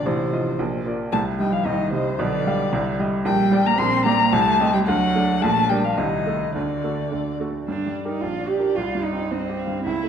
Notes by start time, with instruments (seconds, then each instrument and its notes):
0.05 grand piano A1 A2, cello C3, violin C5
0.33 grand piano F3 F4 D#5
0.59 grand piano A#1 A#2
0.86 grand piano A#3 F4 D5
1.12 grand piano C2 C3, cello A3, violin A5
1.38 cello G3, grand piano G3 D#4 D#5, violin G5
1.51 cello F3, violin F5
1.64 grand piano C2 C3, cello D#3, violin D#5
1.91 cello C3, grand piano G3 D#4 D#5, violin C5
2.19 grand piano B1 B2, cello D3, violin D5
2.47 grand piano G3 G4 F5
2.73 grand piano C2 C3
2.99 grand piano G3 G4 D#5
3.25 grand piano A#1 A#2, cello G3, violin G5
3.51 grand piano G3 G4 D5
3.65 cello A#3, violin A#5
3.78 grand piano A#1 A#2, cello C4, violin C6
4.05 grand piano G3 G4 D5, cello A#3, violin A#5
4.32 grand piano C2 C3, cello A3, violin A5
4.60 grand piano C4 G4 D#5
4.73 cello G3, violin G5
4.87 grand piano D2 D3, cello F#3, violin F#5
5.16 grand piano A3 D4 D5
5.42 grand piano A#1 A#2, cello A3, violin A5
5.69 cello G3, grand piano A#3 D4 D5, violin G5
5.84 cello F3, violin F5
5.97 grand piano C2 C3, cello D#3, violin D#5
6.27 grand piano A3 D#4 A4
6.55 grand piano D2 D3, cello D3, violin D5
6.84 grand piano A3 F#4 A4
7.12 grand piano D2 D3
7.40 grand piano A3 F#4 A4
7.67 grand piano G2, cello D4, violin D5
7.87 grand piano G3
8.05 cello D#4, grand piano G4 A#4
8.21 grand piano A#1, cello F4
8.41 grand piano D4
8.48 cello G4
8.58 grand piano F4 A#4
8.76 grand piano C2, cello F4
8.95 grand piano G2
9.04 cello D#4
9.13 grand piano C4
9.31 grand piano G2, cello C4, violin D#5
9.49 grand piano G4
9.59 violin F5
9.68 grand piano G2
9.86 grand piano C#2, cello E4, violin E5
10.04 grand piano A3